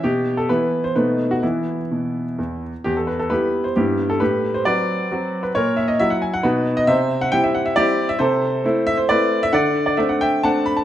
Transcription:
<<
  \new Staff \with { instrumentName = "Grand piano" } { \time 3/4 \key e \minor \tempo 4 = 134 g'8. a'16 b'8. c''16 b'8. fis'16 | e'2~ e'8 r8 | g'16 a'16 b'16 a'16 <g' b'>8. c''16 <e' g'>8. a'16 | <g' b'>8. c''16 <b' d''>4.~ <b' d''>16 b'16 |
<ais' cis''>8 e''16 dis''16 e''16 fis''16 gis''16 fis''16 <fis' b'>8. dis''16 | <c'' e''>8. fis''16 g''16 e''16 fis''16 e''16 <g' d''>8. e''16 | \key a \dorian <a' c''>4. e''16 c''16 <b' d''>8. e''16 | <d'' fis''>8. d''16 e''16 fis''16 <e'' g''>8 <fis'' a''>8 b''16 a''16 | }
  \new Staff \with { instrumentName = "Grand piano" } { \time 3/4 \key e \minor b,4 <e b e'>4 <b, a b dis'>4 | <e b>4 b,4 e,4 | e,4 <g b e'>4 <g, g b>4 | a,4 <fis c' fis'>4 <fis c' fis'>4 |
ais,4 <fis e' fis'>4 <b, b dis'>4 | c4 <g c' e'>4 <g c' e'>4 | \key a \dorian c4 <a c' e'>4 <a c' e'>4 | d4 <a c' d'>4 <a c' d'>4 | }
>>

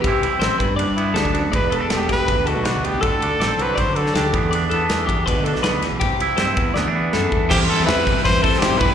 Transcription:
<<
  \new Staff \with { instrumentName = "Clean electric guitar" } { \time 4/4 \key c \lydian \tempo 4 = 161 g'4 c''8 b'8 d''4 a'4 | d''8 a'4 g'8 b'8 a'8 b'4 | a'4 d''8 c''8 d''4 a'4 | d''8 a'4 g'8 b'8 a'8 b'4 |
g'4 c''8 b'8 d''4 a'4 | c''4 e''4 b'8 c''4 b'8 | }
  \new Staff \with { instrumentName = "Trumpet" } { \time 4/4 \key c \lydian r2 r8 e'8 d'8 d'8 | b'8 a'8 g'8 b'4 fis'4 g'8 | a'4. b'8 c''8 a'8 g'8. r16 | r1 |
r1 | g'8 a'8 b'4 c''8 a'8 g'8 b'8 | }
  \new Staff \with { instrumentName = "Overdriven electric guitar" } { \time 4/4 \key c \lydian r1 | r1 | r1 | r1 |
r1 | <e g c' e'>8 <g c' e'>8 <e g c' e'>8 <g c' e'>4 <g c' e'>8 <e g c' e'>8 <e g b e'>8 | }
  \new Staff \with { instrumentName = "Clean electric guitar" } { \time 4/4 \key c \lydian << { <e c' e'>8 e'8 c'8 r8 d'8 b4. | r8 b16 d'16 b2 d'8 b8 | r8 d'8 c'2 d'8 <e b d'>8 | d'8 b2 d'8 b8 r8 |
r8 e'8 c'8 r8 b16 d'16 b4. | r1 | } \\ { c4. g,4. g,8 fis,8 | e,4. e4 b,4. | d4. fis4 d4 e,8~ | e,4 e4 b,4. e,8 |
c4. e,4. e4~ | e1 | } >> }
  \new Staff \with { instrumentName = "Fingered electric bass" } { \clef bass \time 4/4 \key c \lydian c,16 r16 c,16 r16 a,,16 r16 g,,8 fis,,16 g,8. d,4 | e,,8 e,,16 r16 e,,8 e,,8 d,16 d,8 b,,8 d,16 r16 c,16 | d,16 r16 d,16 r16 a,,16 r16 c,8 c,16 d8. d,8 e,8~ | e,8 e,16 r16 e,8 e,8 d,16 d8 b,,8 d,16 r16 b,,16 |
c,16 r16 c,16 r16 g,16 r16 e,8 d,16 e8. fis,8 e,8 | e,8 r16 e,16 e,16 r16 b,,16 r16 e,8 r8 g,16 b,,16 e,8 | }
  \new DrumStaff \with { instrumentName = "Drums" } \drummode { \time 4/4 <bd cymr>8 cymr8 <cymr sn>8 <bd cymr>8 cymr8 cymr8 <cymr sn>16 bd16 cymr8 | <bd cymr>8 cymr8 <cymr sn>8 <bd cymr>8 <bd cymr>8 cymr8 <cymr sn>8 cymr8 | <bd cymr>8 cymr8 <cymr sn>8 cymr8 <bd cymr>8 cymr16 sn16 <cymr sn>8 <bd cymr>8 | cymr8 cymr8 <cymr sn>8 <bd cymr>8 <bd cymr>8 cymr16 sn16 <cymr sn>8 <cymr sn>8 |
<bd cymr>8 cymr8 <cymr sn>8 <bd cymr>8 sn4 sn8 bd8 | <cymc bd>8 hho8 <hho sn>8 <hho bd>8 <hho bd>8 <hho bd>16 sn16 <hho sn>8 <hho bd>8 | }
>>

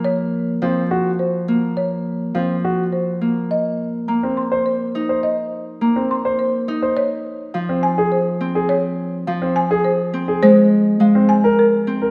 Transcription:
<<
  \new Staff \with { instrumentName = "Marimba" } { \time 3/4 \key ees \mixolydian \tempo 4 = 104 des''16 r8. f''16 r8. c''16 r8. | des''16 r8. f''16 r8. c''16 r8. | ees''16 r8. bes''16 r16 c'''16 r16 c''16 r8. | ees''16 r8. bes''16 r16 c'''16 r16 c''16 r8. |
des''16 r8. f''16 r16 aes''16 r16 c''16 r8. | des''16 r8. f''16 r16 aes''16 r16 c''16 r8. | c''16 r8. f''16 r16 aes''16 r16 bes'16 r8. | }
  \new Staff \with { instrumentName = "Grand piano" } { \time 3/4 \key ees \mixolydian r4 c'16 r16 ges'16 r4 r16 | r4 c'16 r16 ges'16 r4 r16 | r4 r16 c'16 r16 c''16 r8. c''16 | r4 r16 c'16 r16 c''16 r8. c''16 |
r4 r16 c'16 r16 aes'16 r8. aes'16 | r4 r16 c'16 r16 aes'16 r8. aes'16 | r4 r16 c'16 r16 bes'16 r8. bes'16 | }
  \new Staff \with { instrumentName = "Harp" } { \time 3/4 \key ees \mixolydian <f bes>4 f4. bes8~ | bes4 f4. bes8~ | bes4 bes4. ees'8~ | ees'4 bes4. ees'8 |
r4 f4. c'8~ | c'4 f4. c'8 | aes4 aes4. c'8 | }
>>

